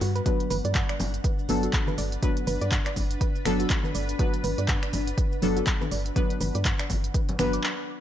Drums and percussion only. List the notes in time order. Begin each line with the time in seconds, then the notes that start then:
0.01 open hi-hat, shaker
0.16 closed hi-hat, shaker
0.26 kick, closed hi-hat, shaker
0.40 closed hi-hat, shaker
0.50 open hi-hat, high conga, shaker
0.65 closed hi-hat, shaker
0.75 kick, clap, closed hi-hat, shaker
0.89 finger snap, closed hi-hat, shaker
1.00 open hi-hat, low conga, shaker
1.14 closed hi-hat, shaker
1.24 kick, closed hi-hat, shaker
1.39 shaker
1.49 open hi-hat, shaker
1.63 closed hi-hat, shaker
1.73 kick, clap, closed hi-hat, shaker
1.87 high conga, shaker
1.98 open hi-hat, shaker
2.12 closed hi-hat, shaker
2.23 kick, closed hi-hat, shaker
2.37 closed hi-hat, shaker
2.47 open hi-hat, high conga, shaker
2.61 closed hi-hat, shaker
2.72 kick, clap, closed hi-hat, shaker
2.86 finger snap, clap, closed hi-hat, shaker
2.96 kick, open hi-hat, low conga, shaker
3.11 closed hi-hat, shaker
3.21 kick, closed hi-hat, shaker
3.36 shaker
3.46 finger snap, open hi-hat, shaker
3.60 closed hi-hat, shaker
3.70 kick, clap, closed hi-hat, shaker
3.84 high conga, shaker
3.95 open hi-hat, shaker
4.09 closed hi-hat, shaker
4.19 kick, closed hi-hat, shaker
4.34 closed hi-hat, shaker
4.44 open hi-hat, high conga, shaker
4.58 closed hi-hat, shaker
4.68 kick, clap, closed hi-hat, shaker
4.83 finger snap, closed hi-hat, shaker
4.93 open hi-hat, low conga, shaker
5.07 closed hi-hat, shaker
5.18 kick, closed hi-hat, shaker
5.32 shaker
5.42 open hi-hat, shaker
5.57 closed hi-hat, shaker
5.67 kick, clap, closed hi-hat, shaker
5.81 high conga, shaker
5.91 open hi-hat, shaker
6.06 closed hi-hat, shaker
6.16 kick, closed hi-hat, shaker
6.30 closed hi-hat, shaker
6.41 open hi-hat, high conga, shaker
6.55 closed hi-hat, shaker
6.65 kick, clap, closed hi-hat, shaker
6.79 finger snap, clap, closed hi-hat, shaker
6.90 kick, open hi-hat, high conga, low conga, shaker
7.04 closed hi-hat, shaker
7.14 kick, closed hi-hat, shaker
7.29 closed hi-hat, low conga, shaker
7.39 finger snap, open hi-hat, high conga, low conga, shaker
7.53 closed hi-hat, shaker
7.64 clap